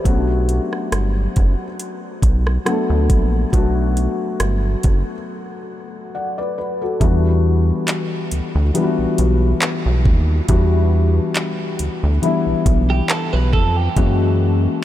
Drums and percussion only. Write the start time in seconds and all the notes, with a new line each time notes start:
0.05 kick, closed hi-hat
0.49 closed hi-hat
0.73 cross-stick
0.92 cross-stick, closed hi-hat
1.36 kick, closed hi-hat
1.80 closed hi-hat
2.22 kick, closed hi-hat
2.47 cross-stick
2.66 cross-stick, closed hi-hat
3.10 kick, closed hi-hat
3.53 kick, closed hi-hat
3.97 closed hi-hat
4.40 cross-stick, closed hi-hat
4.83 kick, closed hi-hat
7.01 kick, closed hi-hat
7.88 clap, closed hi-hat
8.31 closed hi-hat
8.75 closed hi-hat
9.18 closed hi-hat
9.62 clap, closed hi-hat
10.05 kick
10.48 kick, closed hi-hat
11.35 clap, closed hi-hat
11.79 closed hi-hat
12.23 closed hi-hat
12.66 kick, closed hi-hat
13.09 clap, closed hi-hat
13.53 kick
13.97 kick, closed hi-hat